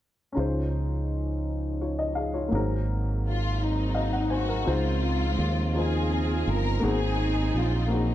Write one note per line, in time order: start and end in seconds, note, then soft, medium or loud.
0.32 1.40 C#3 soft
0.32 2.49 F3 soft
0.32 2.46 C#4 soft
0.32 2.49 C#4 soft
0.32 2.48 D#4 soft
0.32 2.50 D#4 medium
0.37 2.49 C#2 soft
0.37 1.78 F4 soft
0.37 1.79 C5 medium
1.81 1.99 F4 soft
1.81 1.98 C#5 soft
1.99 2.16 D#5 soft
2.15 2.33 G#4 soft
2.15 2.33 F5 soft
2.34 2.69 F4 soft
2.34 2.68 C#5 soft
2.48 4.64 G#1 medium
2.48 3.56 G#2 soft
2.48 4.65 F#3 medium
2.48 3.93 F#3 soft
2.48 4.65 G#3 medium
2.48 2.57 A#3 soft
2.48 4.65 A#3 soft
2.53 4.63 C4 soft
2.53 3.94 G#4 soft
2.53 3.95 A#4 medium
3.27 3.59 F4 medium
3.61 4.65 F#3 soft
3.61 4.64 C4 medium
3.61 4.33 D#4 medium
3.94 4.30 F#4 soft
3.94 4.30 D#5 soft
3.94 4.12 F5 soft
4.13 4.30 F#5 soft
4.30 4.49 D#4 soft
4.30 4.48 C5 soft
4.30 4.64 G#5 soft
4.35 4.69 F#4 medium
4.49 4.84 A#4 medium
4.65 5.35 C#2 medium
4.65 5.71 C#3 soft
4.65 6.80 C#3 soft
4.65 6.80 F3 medium
4.65 5.57 C4 medium
4.65 6.80 C4 medium
4.65 5.58 D#4 medium
4.65 6.80 D#4 medium
4.65 5.58 F4 medium
4.65 5.59 C5 medium
4.70 5.73 G#3 medium
4.70 5.73 C4 medium
4.70 5.75 F4 medium
5.39 6.43 D#2 medium
5.74 6.65 C#3 soft
5.74 6.80 C4 medium
5.74 6.66 D#4 soft
5.74 6.66 F4 soft
5.74 6.79 F4 medium
5.74 6.67 C5 soft
5.78 6.48 G#4 medium
6.47 6.80 G1 medium
6.47 6.84 A#4 medium
6.80 7.51 G#1 medium
6.80 7.86 G#2 soft
6.80 8.15 F#3 medium
6.80 8.15 G#3 soft
6.80 7.72 A#3 medium
6.80 8.15 A#3 medium
6.80 6.89 B3 soft
6.80 8.15 C4 medium
6.80 7.86 C4 medium
6.80 7.86 D#4 medium
6.80 7.73 F#4 medium
6.80 7.74 G#4 medium
6.85 7.76 C4 medium
6.85 7.55 G#4 medium
7.54 8.15 A#1 medium
7.54 7.92 F4 medium
7.88 8.15 F#3 medium
7.88 8.15 A#3 soft
7.88 8.15 C4 soft
7.88 8.15 F#4 soft
7.88 8.15 G#4 soft
7.93 8.15 D#4 medium